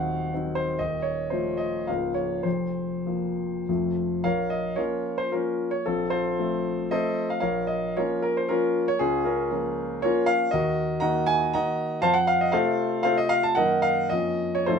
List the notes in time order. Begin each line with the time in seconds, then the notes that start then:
Already playing: D#1 D#2 F#3 C4 D#4 F5 F#5
0.33 F#3 C4 D#4
0.55 C5
0.79 D#1 D#2 D#5
1.02 C#5
1.30 F3 A3 F4 C5
1.57 D#5
1.87 C#1 C#2 F3 A#3 F4 F5
2.14 C#5
2.43 F1 F2 C5
3.06 F3 A#3 F4
3.69 F1 F2 F3 A3 F4
4.24 A#1 A#4 C#5 F5
4.50 D#5
4.76 F3 A#3 C#4 F4 A#4 C#5
5.18 C5
5.32 F3 A#3 C#4 F4 A#4
5.71 C#5
5.86 A#1 C4 F4 A4
6.10 F4 A4 C5
6.39 F3 A3 C4
6.91 F3 A3 C4 A4 C5 D#5
7.30 F5
7.40 A#1 A#4 C#5 F5
7.67 D#5
7.97 F3 A#3 C#4 F4 A#4 C#5
8.22 A#4
8.37 C5
8.49 F3 A#3 C#4 F4 A#4
8.88 C#5
8.99 C#2 C#4 F4 G#4
9.25 C#4 F4 A#4
9.51 F3 A#3 C#4
10.02 F3 A#3 C#4 F4 A#4 C#5
10.26 F5
10.51 D#2 F#4 A#4 D#5
11.00 D#3 A#3 F#4 D#5 F#5 A#5
11.26 G#5
11.53 D#3 A#3 F#4 D#5 F#5 A#5
12.02 F2 C5 F5 A5
12.14 F#5
12.27 F5
12.41 D#5
12.52 C3 A3 F4 A4 C5 F5
13.03 C3 A3 F4 A4 C5 F5
13.17 D#5
13.29 F5
13.43 A5
13.55 F#2 D#3 A#3 D#4 A#4 D#5 F#5
13.82 F5
14.09 F2 F3 A#3 C#4 D#5
14.55 C#5
14.66 F2 F3 A3 D#4 F4 A4 C5